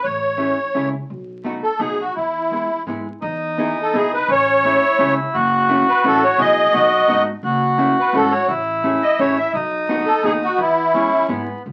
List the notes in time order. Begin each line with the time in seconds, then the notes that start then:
0.04 A1 C#5
0.38 A3 C#4 E4 G#4
0.75 C#2 A3 C#4 E4 G#4
1.10 B1
1.44 A3 B3 D#4 F#4
1.63 A4
1.79 B1 A3 B3 D#4 F#4 G#4
2.01 F#4
2.15 E2 E4
2.51 G#3 B3 E4 G#4
2.86 G#2 G#3 B3 E4 G#4
3.22 E2 D#4
3.58 B3 D#4 E4 G#4
3.82 A4
3.93 B1 B3 D#4 E4 G#4
4.14 B4
4.28 A1 C#4 C#5
4.64 A3 C#4 E4 G#4
4.99 C#2 A3 C#4 E4 G#4
5.34 F#1 F#4
5.69 A3 C#4 E4 F#4
5.89 B4
6.04 A1 A3 C#4 E4 F#4 A4
6.24 C#5
6.38 B1 A3 B3 E4 F#4 G#4 D#5
6.72 B1 A3 B3 D#4 F#4
7.08 G#1 A3 B3 D#4 F#4
7.43 F#1 F#4
7.78 A3 C#4 E4 F#4
8.00 B4
8.13 G#1 A3 C#4 E4 F#4 A4
8.31 C#5
8.48 A1 E4
8.84 A3 C#4 E4 G#4
9.03 D#5
9.19 A1 A3 C#4 E4 G#4 C#5
9.38 E5
9.53 B1 D#4
9.89 A3 B3 D#4 F#4
10.06 A4
10.23 D#2 A3 B3 D#4 F#4 G#4
10.44 F#4
10.57 E2 B3 E4
10.94 G#3 B3 C#4 E4 G#4
11.28 G#2 G#3 B3 E4 G#4
11.66 C#2